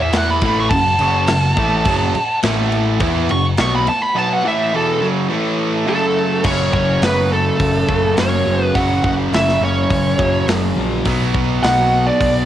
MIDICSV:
0, 0, Header, 1, 10, 480
1, 0, Start_track
1, 0, Key_signature, 3, "minor"
1, 0, Tempo, 574163
1, 1557, Time_signature, 4, 2, 24, 8
1, 10410, End_track
2, 0, Start_track
2, 0, Title_t, "Lead electric guitar"
2, 0, Program_c, 0, 29
2, 18, Note_on_c, 0, 76, 92
2, 138, Note_off_c, 0, 76, 0
2, 138, Note_on_c, 0, 78, 96
2, 245, Note_off_c, 0, 78, 0
2, 255, Note_on_c, 0, 83, 85
2, 480, Note_off_c, 0, 83, 0
2, 505, Note_on_c, 0, 85, 97
2, 583, Note_off_c, 0, 85, 0
2, 586, Note_on_c, 0, 81, 119
2, 1998, Note_off_c, 0, 81, 0
2, 2770, Note_on_c, 0, 85, 105
2, 2880, Note_off_c, 0, 85, 0
2, 3014, Note_on_c, 0, 85, 102
2, 3122, Note_off_c, 0, 85, 0
2, 3139, Note_on_c, 0, 83, 94
2, 3245, Note_off_c, 0, 83, 0
2, 3251, Note_on_c, 0, 81, 99
2, 3358, Note_off_c, 0, 81, 0
2, 3358, Note_on_c, 0, 83, 99
2, 3474, Note_off_c, 0, 83, 0
2, 3498, Note_on_c, 0, 81, 105
2, 3618, Note_off_c, 0, 81, 0
2, 3618, Note_on_c, 0, 78, 96
2, 3724, Note_off_c, 0, 78, 0
2, 3744, Note_on_c, 0, 76, 103
2, 3963, Note_off_c, 0, 76, 0
2, 3976, Note_on_c, 0, 69, 118
2, 4199, Note_off_c, 0, 69, 0
2, 4926, Note_on_c, 0, 69, 86
2, 5369, Note_off_c, 0, 69, 0
2, 5402, Note_on_c, 0, 73, 99
2, 5624, Note_off_c, 0, 73, 0
2, 5634, Note_on_c, 0, 73, 93
2, 5883, Note_off_c, 0, 73, 0
2, 5885, Note_on_c, 0, 71, 91
2, 6125, Note_off_c, 0, 71, 0
2, 6128, Note_on_c, 0, 69, 92
2, 6810, Note_off_c, 0, 69, 0
2, 6853, Note_on_c, 0, 73, 109
2, 7229, Note_off_c, 0, 73, 0
2, 7229, Note_on_c, 0, 71, 109
2, 7316, Note_on_c, 0, 78, 112
2, 7340, Note_off_c, 0, 71, 0
2, 7548, Note_off_c, 0, 78, 0
2, 7558, Note_on_c, 0, 78, 108
2, 7623, Note_off_c, 0, 78, 0
2, 7817, Note_on_c, 0, 76, 100
2, 8032, Note_off_c, 0, 76, 0
2, 8062, Note_on_c, 0, 73, 83
2, 8738, Note_off_c, 0, 73, 0
2, 9722, Note_on_c, 0, 78, 109
2, 10087, Note_on_c, 0, 74, 100
2, 10093, Note_off_c, 0, 78, 0
2, 10410, Note_off_c, 0, 74, 0
2, 10410, End_track
3, 0, Start_track
3, 0, Title_t, "Lead electric guitar"
3, 0, Program_c, 1, 29
3, 4911, Note_on_c, 1, 57, 70
3, 5361, Note_off_c, 1, 57, 0
3, 5398, Note_on_c, 1, 61, 81
3, 5621, Note_off_c, 1, 61, 0
3, 5632, Note_on_c, 1, 61, 70
3, 5858, Note_off_c, 1, 61, 0
3, 5878, Note_on_c, 1, 59, 89
3, 6101, Note_off_c, 1, 59, 0
3, 6107, Note_on_c, 1, 57, 75
3, 6800, Note_off_c, 1, 57, 0
3, 6832, Note_on_c, 1, 61, 78
3, 7183, Note_off_c, 1, 61, 0
3, 7183, Note_on_c, 1, 59, 78
3, 7282, Note_off_c, 1, 59, 0
3, 7317, Note_on_c, 1, 66, 93
3, 7541, Note_off_c, 1, 66, 0
3, 7558, Note_on_c, 1, 66, 81
3, 7623, Note_off_c, 1, 66, 0
3, 7801, Note_on_c, 1, 64, 96
3, 8023, Note_off_c, 1, 64, 0
3, 8058, Note_on_c, 1, 61, 80
3, 8736, Note_off_c, 1, 61, 0
3, 9723, Note_on_c, 1, 66, 103
3, 10058, Note_off_c, 1, 66, 0
3, 10102, Note_on_c, 1, 62, 86
3, 10410, Note_off_c, 1, 62, 0
3, 10410, End_track
4, 0, Start_track
4, 0, Title_t, "Distorted electric guitar"
4, 0, Program_c, 2, 30
4, 7069, Note_on_c, 2, 54, 81
4, 7083, Note_on_c, 2, 49, 81
4, 7097, Note_on_c, 2, 42, 67
4, 7296, Note_off_c, 2, 42, 0
4, 7307, Note_off_c, 2, 49, 0
4, 7336, Note_off_c, 2, 54, 0
4, 8997, Note_on_c, 2, 54, 88
4, 9014, Note_on_c, 2, 49, 78
4, 9027, Note_on_c, 2, 42, 68
4, 9233, Note_off_c, 2, 49, 0
4, 9239, Note_off_c, 2, 42, 0
4, 9254, Note_off_c, 2, 54, 0
4, 10410, End_track
5, 0, Start_track
5, 0, Title_t, "Overdriven electric guitar"
5, 0, Program_c, 3, 29
5, 0, Note_on_c, 3, 52, 90
5, 0, Note_on_c, 3, 59, 99
5, 0, Note_on_c, 3, 64, 96
5, 350, Note_off_c, 3, 52, 0
5, 353, Note_on_c, 3, 45, 93
5, 354, Note_off_c, 3, 59, 0
5, 356, Note_off_c, 3, 64, 0
5, 361, Note_on_c, 3, 52, 100
5, 366, Note_on_c, 3, 57, 106
5, 588, Note_off_c, 3, 45, 0
5, 592, Note_off_c, 3, 52, 0
5, 595, Note_off_c, 3, 57, 0
5, 604, Note_on_c, 3, 42, 63
5, 607, Note_on_c, 3, 49, 71
5, 793, Note_off_c, 3, 42, 0
5, 794, Note_off_c, 3, 49, 0
5, 840, Note_on_c, 3, 42, 98
5, 841, Note_on_c, 3, 49, 92
5, 847, Note_on_c, 3, 54, 89
5, 1072, Note_off_c, 3, 42, 0
5, 1072, Note_off_c, 3, 49, 0
5, 1075, Note_off_c, 3, 54, 0
5, 1086, Note_on_c, 3, 42, 74
5, 1090, Note_on_c, 3, 49, 70
5, 1274, Note_off_c, 3, 42, 0
5, 1276, Note_off_c, 3, 49, 0
5, 1323, Note_on_c, 3, 45, 99
5, 1326, Note_on_c, 3, 52, 99
5, 1327, Note_on_c, 3, 57, 106
5, 1553, Note_off_c, 3, 45, 0
5, 1553, Note_on_c, 3, 42, 104
5, 1555, Note_off_c, 3, 52, 0
5, 1555, Note_off_c, 3, 57, 0
5, 1557, Note_on_c, 3, 49, 100
5, 1562, Note_on_c, 3, 54, 124
5, 1788, Note_off_c, 3, 42, 0
5, 1790, Note_off_c, 3, 49, 0
5, 1793, Note_off_c, 3, 54, 0
5, 2049, Note_on_c, 3, 45, 106
5, 2055, Note_on_c, 3, 52, 106
5, 2055, Note_on_c, 3, 57, 104
5, 2511, Note_off_c, 3, 52, 0
5, 2516, Note_off_c, 3, 45, 0
5, 2519, Note_off_c, 3, 57, 0
5, 2521, Note_on_c, 3, 52, 92
5, 2523, Note_on_c, 3, 59, 99
5, 2525, Note_on_c, 3, 64, 105
5, 2752, Note_off_c, 3, 52, 0
5, 2753, Note_off_c, 3, 59, 0
5, 2754, Note_off_c, 3, 64, 0
5, 2762, Note_on_c, 3, 42, 68
5, 2767, Note_on_c, 3, 49, 71
5, 2951, Note_off_c, 3, 42, 0
5, 2954, Note_off_c, 3, 49, 0
5, 3002, Note_on_c, 3, 47, 103
5, 3004, Note_on_c, 3, 59, 112
5, 3005, Note_on_c, 3, 54, 100
5, 3232, Note_off_c, 3, 47, 0
5, 3233, Note_off_c, 3, 59, 0
5, 3234, Note_off_c, 3, 54, 0
5, 3469, Note_on_c, 3, 47, 99
5, 3480, Note_on_c, 3, 54, 101
5, 3481, Note_on_c, 3, 59, 112
5, 3706, Note_off_c, 3, 47, 0
5, 3711, Note_off_c, 3, 54, 0
5, 3712, Note_off_c, 3, 59, 0
5, 3712, Note_on_c, 3, 45, 87
5, 3716, Note_on_c, 3, 52, 103
5, 3718, Note_on_c, 3, 57, 96
5, 3947, Note_off_c, 3, 45, 0
5, 3949, Note_off_c, 3, 52, 0
5, 3950, Note_off_c, 3, 57, 0
5, 3955, Note_on_c, 3, 40, 102
5, 3957, Note_on_c, 3, 47, 104
5, 3958, Note_on_c, 3, 52, 118
5, 4185, Note_off_c, 3, 40, 0
5, 4188, Note_on_c, 3, 42, 96
5, 4189, Note_off_c, 3, 47, 0
5, 4190, Note_off_c, 3, 52, 0
5, 4192, Note_on_c, 3, 49, 102
5, 4198, Note_on_c, 3, 54, 114
5, 4417, Note_off_c, 3, 49, 0
5, 4420, Note_on_c, 3, 45, 95
5, 4424, Note_off_c, 3, 54, 0
5, 4425, Note_off_c, 3, 42, 0
5, 4427, Note_on_c, 3, 52, 107
5, 4428, Note_on_c, 3, 57, 106
5, 4901, Note_off_c, 3, 45, 0
5, 4905, Note_off_c, 3, 52, 0
5, 4905, Note_off_c, 3, 57, 0
5, 4906, Note_on_c, 3, 42, 93
5, 4909, Note_on_c, 3, 49, 107
5, 4916, Note_on_c, 3, 54, 102
5, 5370, Note_off_c, 3, 42, 0
5, 5380, Note_on_c, 3, 42, 105
5, 5381, Note_off_c, 3, 49, 0
5, 5389, Note_off_c, 3, 54, 0
5, 5392, Note_on_c, 3, 49, 109
5, 5406, Note_on_c, 3, 54, 110
5, 6575, Note_off_c, 3, 42, 0
5, 6581, Note_off_c, 3, 49, 0
5, 6589, Note_off_c, 3, 54, 0
5, 6593, Note_on_c, 3, 54, 78
5, 6607, Note_on_c, 3, 49, 82
5, 6619, Note_on_c, 3, 42, 72
5, 6828, Note_off_c, 3, 49, 0
5, 6834, Note_off_c, 3, 42, 0
5, 6850, Note_on_c, 3, 42, 75
5, 6858, Note_on_c, 3, 49, 88
5, 6859, Note_off_c, 3, 54, 0
5, 6863, Note_on_c, 3, 54, 90
5, 7310, Note_off_c, 3, 42, 0
5, 7314, Note_off_c, 3, 49, 0
5, 7319, Note_on_c, 3, 42, 89
5, 7328, Note_on_c, 3, 49, 109
5, 7336, Note_off_c, 3, 54, 0
5, 7340, Note_on_c, 3, 54, 102
5, 8506, Note_off_c, 3, 42, 0
5, 8509, Note_off_c, 3, 54, 0
5, 8510, Note_off_c, 3, 49, 0
5, 8512, Note_on_c, 3, 54, 81
5, 8525, Note_on_c, 3, 49, 81
5, 8533, Note_on_c, 3, 42, 74
5, 8748, Note_off_c, 3, 49, 0
5, 8750, Note_off_c, 3, 42, 0
5, 8760, Note_on_c, 3, 42, 75
5, 8776, Note_on_c, 3, 49, 75
5, 8779, Note_off_c, 3, 54, 0
5, 8783, Note_on_c, 3, 54, 85
5, 9226, Note_off_c, 3, 42, 0
5, 9234, Note_off_c, 3, 49, 0
5, 9238, Note_on_c, 3, 47, 100
5, 9247, Note_off_c, 3, 54, 0
5, 9251, Note_on_c, 3, 54, 98
5, 9261, Note_on_c, 3, 59, 115
5, 10410, Note_off_c, 3, 47, 0
5, 10410, Note_off_c, 3, 54, 0
5, 10410, Note_off_c, 3, 59, 0
5, 10410, End_track
6, 0, Start_track
6, 0, Title_t, "Picked electric bass"
6, 0, Program_c, 4, 34
6, 0, Note_on_c, 4, 40, 99
6, 322, Note_off_c, 4, 40, 0
6, 349, Note_on_c, 4, 33, 93
6, 577, Note_off_c, 4, 33, 0
6, 590, Note_on_c, 4, 30, 82
6, 817, Note_off_c, 4, 30, 0
6, 837, Note_on_c, 4, 30, 96
6, 1061, Note_off_c, 4, 30, 0
6, 1078, Note_on_c, 4, 30, 76
6, 1301, Note_off_c, 4, 30, 0
6, 1308, Note_on_c, 4, 33, 103
6, 1536, Note_off_c, 4, 33, 0
6, 1550, Note_on_c, 4, 30, 103
6, 1777, Note_off_c, 4, 30, 0
6, 2040, Note_on_c, 4, 33, 99
6, 2485, Note_off_c, 4, 33, 0
6, 2507, Note_on_c, 4, 40, 102
6, 2735, Note_off_c, 4, 40, 0
6, 2755, Note_on_c, 4, 30, 83
6, 2979, Note_off_c, 4, 30, 0
6, 2997, Note_on_c, 4, 35, 104
6, 3220, Note_off_c, 4, 35, 0
6, 5388, Note_on_c, 4, 30, 105
6, 5578, Note_off_c, 4, 30, 0
6, 5629, Note_on_c, 4, 30, 84
6, 5819, Note_off_c, 4, 30, 0
6, 5871, Note_on_c, 4, 30, 101
6, 6246, Note_off_c, 4, 30, 0
6, 6352, Note_on_c, 4, 30, 99
6, 6540, Note_off_c, 4, 30, 0
6, 6596, Note_on_c, 4, 30, 85
6, 6783, Note_off_c, 4, 30, 0
6, 6839, Note_on_c, 4, 30, 99
6, 7025, Note_off_c, 4, 30, 0
6, 7085, Note_on_c, 4, 30, 97
6, 7268, Note_off_c, 4, 30, 0
6, 7314, Note_on_c, 4, 30, 106
6, 7502, Note_off_c, 4, 30, 0
6, 7556, Note_on_c, 4, 30, 87
6, 7744, Note_off_c, 4, 30, 0
6, 7797, Note_on_c, 4, 30, 103
6, 7984, Note_off_c, 4, 30, 0
6, 8036, Note_on_c, 4, 30, 93
6, 8223, Note_off_c, 4, 30, 0
6, 8280, Note_on_c, 4, 30, 104
6, 8466, Note_off_c, 4, 30, 0
6, 8520, Note_on_c, 4, 30, 90
6, 8706, Note_off_c, 4, 30, 0
6, 8758, Note_on_c, 4, 30, 83
6, 8945, Note_off_c, 4, 30, 0
6, 8998, Note_on_c, 4, 34, 95
6, 9185, Note_off_c, 4, 34, 0
6, 9244, Note_on_c, 4, 35, 100
6, 9429, Note_off_c, 4, 35, 0
6, 9483, Note_on_c, 4, 35, 92
6, 9669, Note_off_c, 4, 35, 0
6, 9721, Note_on_c, 4, 35, 104
6, 10093, Note_off_c, 4, 35, 0
6, 10205, Note_on_c, 4, 35, 99
6, 10390, Note_off_c, 4, 35, 0
6, 10410, End_track
7, 0, Start_track
7, 0, Title_t, "Muted distorted electric guitar strokes"
7, 1802, Note_on_c, 9, 29, 63
7, 1886, Note_off_c, 9, 29, 0
7, 3241, Note_on_c, 9, 29, 60
7, 3324, Note_off_c, 9, 29, 0
7, 10410, End_track
8, 0, Start_track
8, 0, Title_t, "Muted overdriven electric guitar strokes"
8, 1810, Note_on_c, 9, 29, 59
8, 1894, Note_off_c, 9, 29, 0
8, 3240, Note_on_c, 9, 29, 64
8, 3324, Note_off_c, 9, 29, 0
8, 10410, End_track
9, 0, Start_track
9, 0, Title_t, "Muted picked electric bass strokes"
9, 1797, Note_on_c, 9, 29, 42
9, 1881, Note_off_c, 9, 29, 0
9, 3242, Note_on_c, 9, 29, 40
9, 3325, Note_off_c, 9, 29, 0
9, 10410, End_track
10, 0, Start_track
10, 0, Title_t, "Drums"
10, 106, Note_on_c, 9, 49, 78
10, 114, Note_on_c, 9, 38, 107
10, 189, Note_off_c, 9, 49, 0
10, 197, Note_off_c, 9, 38, 0
10, 346, Note_on_c, 9, 49, 68
10, 351, Note_on_c, 9, 36, 104
10, 429, Note_off_c, 9, 49, 0
10, 435, Note_off_c, 9, 36, 0
10, 589, Note_on_c, 9, 49, 93
10, 591, Note_on_c, 9, 36, 100
10, 672, Note_off_c, 9, 49, 0
10, 675, Note_off_c, 9, 36, 0
10, 825, Note_on_c, 9, 49, 70
10, 909, Note_off_c, 9, 49, 0
10, 1064, Note_on_c, 9, 49, 90
10, 1073, Note_on_c, 9, 38, 120
10, 1148, Note_off_c, 9, 49, 0
10, 1156, Note_off_c, 9, 38, 0
10, 1308, Note_on_c, 9, 49, 66
10, 1312, Note_on_c, 9, 36, 97
10, 1392, Note_off_c, 9, 49, 0
10, 1395, Note_off_c, 9, 36, 0
10, 1545, Note_on_c, 9, 49, 84
10, 1551, Note_on_c, 9, 36, 112
10, 1629, Note_off_c, 9, 49, 0
10, 1634, Note_off_c, 9, 36, 0
10, 1795, Note_on_c, 9, 49, 62
10, 1878, Note_off_c, 9, 49, 0
10, 2028, Note_on_c, 9, 49, 86
10, 2036, Note_on_c, 9, 38, 123
10, 2111, Note_off_c, 9, 49, 0
10, 2120, Note_off_c, 9, 38, 0
10, 2271, Note_on_c, 9, 49, 57
10, 2355, Note_off_c, 9, 49, 0
10, 2507, Note_on_c, 9, 49, 81
10, 2511, Note_on_c, 9, 36, 112
10, 2590, Note_off_c, 9, 49, 0
10, 2595, Note_off_c, 9, 36, 0
10, 2750, Note_on_c, 9, 49, 65
10, 2834, Note_off_c, 9, 49, 0
10, 2985, Note_on_c, 9, 49, 76
10, 2994, Note_on_c, 9, 38, 117
10, 3069, Note_off_c, 9, 49, 0
10, 3077, Note_off_c, 9, 38, 0
10, 3232, Note_on_c, 9, 49, 59
10, 3315, Note_off_c, 9, 49, 0
10, 5383, Note_on_c, 9, 57, 111
10, 5390, Note_on_c, 9, 36, 105
10, 5466, Note_off_c, 9, 57, 0
10, 5473, Note_off_c, 9, 36, 0
10, 5630, Note_on_c, 9, 36, 87
10, 5714, Note_off_c, 9, 36, 0
10, 5870, Note_on_c, 9, 46, 59
10, 5878, Note_on_c, 9, 38, 113
10, 5953, Note_off_c, 9, 46, 0
10, 5962, Note_off_c, 9, 38, 0
10, 6351, Note_on_c, 9, 46, 59
10, 6353, Note_on_c, 9, 36, 97
10, 6435, Note_off_c, 9, 46, 0
10, 6437, Note_off_c, 9, 36, 0
10, 6593, Note_on_c, 9, 36, 87
10, 6676, Note_off_c, 9, 36, 0
10, 6829, Note_on_c, 9, 46, 63
10, 6838, Note_on_c, 9, 38, 111
10, 6913, Note_off_c, 9, 46, 0
10, 6921, Note_off_c, 9, 38, 0
10, 7316, Note_on_c, 9, 36, 105
10, 7317, Note_on_c, 9, 46, 56
10, 7400, Note_off_c, 9, 36, 0
10, 7400, Note_off_c, 9, 46, 0
10, 7558, Note_on_c, 9, 36, 83
10, 7642, Note_off_c, 9, 36, 0
10, 7805, Note_on_c, 9, 46, 64
10, 7813, Note_on_c, 9, 38, 108
10, 7888, Note_off_c, 9, 46, 0
10, 7897, Note_off_c, 9, 38, 0
10, 7931, Note_on_c, 9, 38, 33
10, 8015, Note_off_c, 9, 38, 0
10, 8281, Note_on_c, 9, 36, 92
10, 8285, Note_on_c, 9, 46, 68
10, 8365, Note_off_c, 9, 36, 0
10, 8368, Note_off_c, 9, 46, 0
10, 8520, Note_on_c, 9, 36, 90
10, 8603, Note_off_c, 9, 36, 0
10, 8760, Note_on_c, 9, 46, 67
10, 8769, Note_on_c, 9, 38, 123
10, 8844, Note_off_c, 9, 46, 0
10, 8852, Note_off_c, 9, 38, 0
10, 9239, Note_on_c, 9, 46, 64
10, 9241, Note_on_c, 9, 36, 107
10, 9322, Note_off_c, 9, 46, 0
10, 9325, Note_off_c, 9, 36, 0
10, 9482, Note_on_c, 9, 36, 81
10, 9566, Note_off_c, 9, 36, 0
10, 9726, Note_on_c, 9, 46, 63
10, 9734, Note_on_c, 9, 38, 107
10, 9809, Note_off_c, 9, 46, 0
10, 9817, Note_off_c, 9, 38, 0
10, 10202, Note_on_c, 9, 46, 66
10, 10203, Note_on_c, 9, 36, 85
10, 10285, Note_off_c, 9, 46, 0
10, 10286, Note_off_c, 9, 36, 0
10, 10410, End_track
0, 0, End_of_file